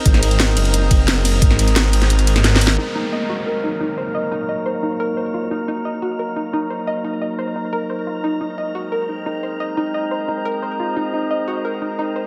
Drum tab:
CC |------------------------------------------------|------------------------------------------------|x-----------------------------------------------|------------------------------------------------|
RD |------x-----------x-----------x-----------x-----|------x-----------x-----------x-----------x-----|------------------------------------------------|------------------------------------------------|
HH |x-----x--x--x-----x--x--x-----x-----x-----o-----|x-----x--x--x-----x--x--x--x--x--x--x-----o-----|------------------------------------------------|------------------------------------------------|
SD |---o--------o-----------------------o-----------|---o--------o--------o-----------o--o---o---o---|------------------------------------------------|------------------------------------------------|
BD |o-----------------------------o-----------------|o-----------------------------------------------|------------------------------------------------|------------------------------------------------|

CC |------------------------------------------------|------------------------------------------------|------------------------------------------------|------------------------------------------------|
RD |------------------------------------------------|------------------------------------------------|------------------------------------------------|------------------------------------------------|
HH |------------------------------------------------|------------------------------------------------|------------------------------------------------|------------------------------------------------|
SD |------------------------------------------------|------------------------------------------------|------------------------------------------------|------------------------------------------------|
BD |------------------------------------------------|------------------------------------------------|------------------------------------------------|------------------------------------------------|

CC |------------------------------------------------|
RD |------------------------------------------------|
HH |------------------------------------------------|
SD |------------------------------------------------|
BD |------------------------------------------------|